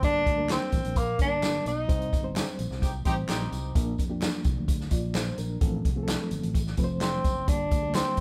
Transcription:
0.03 G1 G3 A#3 D4 A#4, kick, closed hi-hat, tambourine
0.26 D2, kick, closed hi-hat, tambourine
0.36 G3 A#3 D4 A#4
0.49 C4, snare, clap, closed hi-hat, tambourine
0.72 A1, kick, closed hi-hat, tambourine
0.85 A#1, closed hi-hat
0.96 A#3, kick, closed hi-hat, tambourine
1.18 G1 G3 A#3 D4 A#4, kick, closed hi-hat, tambourine
1.42 snare, clap, closed hi-hat, tambourine
1.65 B1 D#4, closed hi-hat, tambourine
1.88 C2 G3 C4 D#4 C5, kick, closed hi-hat, tambourine
2.02 closed hi-hat
2.13 G1, kick, closed hi-hat, tambourine
2.23 G3 C4 D#4 C5
2.36 C4 D#4 G4, snare, clap, closed hi-hat, tambourine
2.59 A#1, closed hi-hat, tambourine
2.70 C2, snare
2.82 C4 D#4 G4, kick, closed hi-hat, tambourine
3.04 A1 G3 C4 D#4 G4 C5, kick, closed hi-hat, tambourine
3.28 A#1 C4 D#4 G4, snare, clap, closed hi-hat, tambourine
3.52 C2, closed hi-hat, tambourine
3.75 A#1 F3 A#3 D4 A#4, kick, closed hi-hat, tambourine
3.98 F2, kick, closed hi-hat, tambourine
4.10 F3 A#3 D4 G4
4.22 snare, clap, closed hi-hat, tambourine
4.44 C2, kick, closed hi-hat, tambourine
4.56 D2
4.68 kick, closed hi-hat, tambourine
4.80 snare
4.91 A#1 F4 D5, kick, closed hi-hat, tambourine
5.14 C5, snare, clap, closed hi-hat, tambourine
5.38 A#1 D4 A#4, closed hi-hat, tambourine
5.61 A1 F3 A3 C4 A4, kick, closed hi-hat
5.85 C2, kick, closed hi-hat
5.96 F3 A3 C4 G#4
6.03 A4
6.08 snare, clap, closed hi-hat, tambourine
6.31 G1, closed hi-hat, tambourine
6.43 A1, closed hi-hat
6.55 kick, closed hi-hat, tambourine
6.67 snare
6.77 F1 F3 A3 C4 B4, kick, closed hi-hat, tambourine
6.84 C5
7.01 C4, snare, clap, closed hi-hat, tambourine
7.24 F#1, kick, closed hi-hat, tambourine
7.47 G1 D3 G3 A#3 D4 G4, kick, closed hi-hat, tambourine
7.71 D2, kick, closed hi-hat, tambourine
7.82 D3 G3 A3 G4
7.88 A#3
7.94 C4, snare, clap, closed hi-hat, tambourine
8.17 closed hi-hat, tambourine

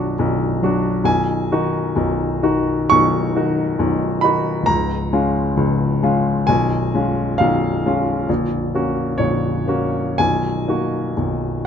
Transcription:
Already playing: B0 B1 F#3 D4 F#4 F#5
0.19 B0 B1
0.63 F#3 D4 F#4
1.04 B0 B1 G#5
1.52 D#3 D#4 F#4
1.96 B0 B1
2.42 D#3 D#4 F#4
2.90 B0 B1 C#6
3.36 D#3 D#4 F#4
3.79 B0 B1
4.21 D#3 D#4 F#4 B5
4.62 C#1 A#5
4.68 C#2
5.13 G#3 C#4 F4
5.57 C#1 C#2
6.03 G#3 C#4 F4
6.47 B0 B1 G#5
6.94 G#3 C#4 F4
7.38 B0 B1 F5
7.86 G#3 C#4 F4
8.29 A#0 A#1
8.75 A#3 C#4 F#4
9.18 A#0 A#1 C#5
9.68 A#3 C#4 F#4
10.18 B0 B1 G#5
10.68 A#3 D#4 F#4
11.17 B0 B1

